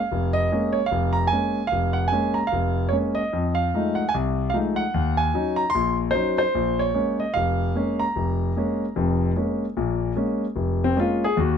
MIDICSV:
0, 0, Header, 1, 2, 480
1, 0, Start_track
1, 0, Key_signature, -5, "minor"
1, 0, Tempo, 402414
1, 113, Time_signature, 4, 2, 24, 8
1, 13808, End_track
2, 0, Start_track
2, 0, Title_t, "Grand piano"
2, 0, Program_c, 0, 0
2, 0, Note_on_c, 0, 77, 84
2, 139, Note_on_c, 0, 29, 64
2, 370, Note_off_c, 0, 77, 0
2, 398, Note_on_c, 0, 75, 90
2, 544, Note_off_c, 0, 29, 0
2, 620, Note_on_c, 0, 56, 48
2, 623, Note_on_c, 0, 58, 45
2, 623, Note_on_c, 0, 61, 52
2, 866, Note_on_c, 0, 73, 73
2, 911, Note_off_c, 0, 75, 0
2, 942, Note_off_c, 0, 56, 0
2, 944, Note_off_c, 0, 58, 0
2, 944, Note_off_c, 0, 61, 0
2, 1030, Note_on_c, 0, 77, 85
2, 1056, Note_off_c, 0, 73, 0
2, 1091, Note_on_c, 0, 29, 65
2, 1344, Note_on_c, 0, 82, 81
2, 1382, Note_off_c, 0, 77, 0
2, 1500, Note_off_c, 0, 29, 0
2, 1517, Note_off_c, 0, 82, 0
2, 1520, Note_on_c, 0, 80, 85
2, 1569, Note_on_c, 0, 56, 44
2, 1582, Note_on_c, 0, 61, 52
2, 1584, Note_on_c, 0, 58, 40
2, 1898, Note_off_c, 0, 56, 0
2, 1904, Note_off_c, 0, 61, 0
2, 1905, Note_off_c, 0, 58, 0
2, 1996, Note_on_c, 0, 77, 89
2, 2033, Note_off_c, 0, 80, 0
2, 2053, Note_on_c, 0, 29, 63
2, 2305, Note_on_c, 0, 78, 73
2, 2345, Note_off_c, 0, 77, 0
2, 2462, Note_off_c, 0, 29, 0
2, 2478, Note_on_c, 0, 80, 81
2, 2497, Note_off_c, 0, 78, 0
2, 2530, Note_on_c, 0, 56, 49
2, 2538, Note_on_c, 0, 58, 42
2, 2539, Note_on_c, 0, 61, 55
2, 2792, Note_on_c, 0, 82, 70
2, 2826, Note_off_c, 0, 80, 0
2, 2858, Note_off_c, 0, 56, 0
2, 2863, Note_off_c, 0, 58, 0
2, 2863, Note_off_c, 0, 61, 0
2, 2947, Note_on_c, 0, 77, 82
2, 2981, Note_off_c, 0, 82, 0
2, 3009, Note_on_c, 0, 29, 60
2, 3420, Note_off_c, 0, 29, 0
2, 3442, Note_on_c, 0, 73, 74
2, 3468, Note_off_c, 0, 77, 0
2, 3484, Note_on_c, 0, 56, 46
2, 3486, Note_on_c, 0, 58, 40
2, 3497, Note_on_c, 0, 61, 49
2, 3518, Note_off_c, 0, 73, 0
2, 3753, Note_on_c, 0, 75, 79
2, 3816, Note_off_c, 0, 56, 0
2, 3817, Note_off_c, 0, 58, 0
2, 3822, Note_off_c, 0, 61, 0
2, 3972, Note_on_c, 0, 41, 61
2, 4220, Note_off_c, 0, 75, 0
2, 4231, Note_on_c, 0, 77, 78
2, 4382, Note_off_c, 0, 41, 0
2, 4458, Note_on_c, 0, 53, 46
2, 4460, Note_on_c, 0, 56, 41
2, 4463, Note_on_c, 0, 57, 44
2, 4469, Note_on_c, 0, 63, 52
2, 4699, Note_off_c, 0, 77, 0
2, 4712, Note_on_c, 0, 78, 70
2, 4783, Note_off_c, 0, 53, 0
2, 4784, Note_off_c, 0, 56, 0
2, 4785, Note_off_c, 0, 57, 0
2, 4788, Note_off_c, 0, 63, 0
2, 4874, Note_on_c, 0, 80, 85
2, 4901, Note_off_c, 0, 78, 0
2, 4941, Note_on_c, 0, 36, 61
2, 4950, Note_off_c, 0, 80, 0
2, 5347, Note_off_c, 0, 36, 0
2, 5364, Note_on_c, 0, 77, 79
2, 5399, Note_on_c, 0, 53, 49
2, 5408, Note_on_c, 0, 56, 42
2, 5413, Note_on_c, 0, 57, 43
2, 5417, Note_on_c, 0, 63, 52
2, 5440, Note_off_c, 0, 77, 0
2, 5680, Note_on_c, 0, 78, 85
2, 5733, Note_off_c, 0, 53, 0
2, 5738, Note_off_c, 0, 56, 0
2, 5741, Note_off_c, 0, 57, 0
2, 5743, Note_off_c, 0, 63, 0
2, 5892, Note_on_c, 0, 39, 63
2, 6170, Note_on_c, 0, 80, 86
2, 6193, Note_off_c, 0, 78, 0
2, 6302, Note_off_c, 0, 39, 0
2, 6368, Note_on_c, 0, 54, 48
2, 6378, Note_on_c, 0, 63, 55
2, 6379, Note_on_c, 0, 61, 46
2, 6636, Note_on_c, 0, 82, 79
2, 6678, Note_off_c, 0, 80, 0
2, 6698, Note_off_c, 0, 54, 0
2, 6703, Note_off_c, 0, 63, 0
2, 6704, Note_off_c, 0, 61, 0
2, 6796, Note_on_c, 0, 84, 94
2, 6805, Note_off_c, 0, 82, 0
2, 6856, Note_on_c, 0, 34, 64
2, 7112, Note_off_c, 0, 84, 0
2, 7264, Note_off_c, 0, 34, 0
2, 7285, Note_on_c, 0, 72, 79
2, 7331, Note_on_c, 0, 54, 47
2, 7336, Note_on_c, 0, 61, 43
2, 7337, Note_on_c, 0, 63, 55
2, 7597, Note_off_c, 0, 72, 0
2, 7615, Note_on_c, 0, 72, 83
2, 7660, Note_off_c, 0, 54, 0
2, 7662, Note_off_c, 0, 61, 0
2, 7663, Note_off_c, 0, 63, 0
2, 7808, Note_on_c, 0, 34, 61
2, 8104, Note_on_c, 0, 73, 83
2, 8120, Note_off_c, 0, 72, 0
2, 8220, Note_off_c, 0, 34, 0
2, 8279, Note_on_c, 0, 56, 48
2, 8282, Note_on_c, 0, 58, 41
2, 8293, Note_on_c, 0, 61, 53
2, 8556, Note_off_c, 0, 73, 0
2, 8584, Note_on_c, 0, 75, 73
2, 8613, Note_off_c, 0, 56, 0
2, 8615, Note_off_c, 0, 58, 0
2, 8620, Note_off_c, 0, 61, 0
2, 8750, Note_on_c, 0, 77, 90
2, 8756, Note_off_c, 0, 75, 0
2, 8781, Note_on_c, 0, 29, 62
2, 9186, Note_off_c, 0, 29, 0
2, 9248, Note_on_c, 0, 56, 47
2, 9249, Note_on_c, 0, 58, 44
2, 9262, Note_on_c, 0, 61, 55
2, 9536, Note_on_c, 0, 82, 79
2, 9577, Note_off_c, 0, 77, 0
2, 9578, Note_off_c, 0, 56, 0
2, 9578, Note_off_c, 0, 58, 0
2, 9584, Note_off_c, 0, 61, 0
2, 9733, Note_on_c, 0, 29, 62
2, 10142, Note_off_c, 0, 29, 0
2, 10217, Note_on_c, 0, 58, 43
2, 10221, Note_on_c, 0, 56, 47
2, 10231, Note_on_c, 0, 61, 54
2, 10542, Note_off_c, 0, 58, 0
2, 10544, Note_off_c, 0, 56, 0
2, 10549, Note_off_c, 0, 61, 0
2, 10689, Note_on_c, 0, 41, 63
2, 10690, Note_on_c, 0, 29, 61
2, 11099, Note_off_c, 0, 41, 0
2, 11099, Note_off_c, 0, 82, 0
2, 11100, Note_off_c, 0, 29, 0
2, 11165, Note_on_c, 0, 56, 45
2, 11175, Note_on_c, 0, 58, 40
2, 11175, Note_on_c, 0, 61, 50
2, 11495, Note_off_c, 0, 56, 0
2, 11500, Note_off_c, 0, 58, 0
2, 11501, Note_off_c, 0, 61, 0
2, 11651, Note_on_c, 0, 34, 63
2, 11652, Note_on_c, 0, 46, 61
2, 12060, Note_off_c, 0, 34, 0
2, 12060, Note_off_c, 0, 46, 0
2, 12114, Note_on_c, 0, 56, 48
2, 12123, Note_on_c, 0, 58, 42
2, 12126, Note_on_c, 0, 61, 54
2, 12449, Note_off_c, 0, 56, 0
2, 12453, Note_off_c, 0, 58, 0
2, 12455, Note_off_c, 0, 61, 0
2, 12591, Note_on_c, 0, 29, 61
2, 12933, Note_on_c, 0, 60, 73
2, 13008, Note_off_c, 0, 29, 0
2, 13078, Note_on_c, 0, 56, 46
2, 13079, Note_off_c, 0, 60, 0
2, 13081, Note_on_c, 0, 58, 44
2, 13084, Note_on_c, 0, 61, 52
2, 13116, Note_on_c, 0, 65, 77
2, 13404, Note_off_c, 0, 65, 0
2, 13410, Note_off_c, 0, 56, 0
2, 13411, Note_on_c, 0, 68, 86
2, 13412, Note_off_c, 0, 58, 0
2, 13413, Note_off_c, 0, 61, 0
2, 13558, Note_off_c, 0, 68, 0
2, 13561, Note_on_c, 0, 39, 67
2, 13594, Note_on_c, 0, 66, 66
2, 13808, Note_off_c, 0, 39, 0
2, 13808, Note_off_c, 0, 66, 0
2, 13808, End_track
0, 0, End_of_file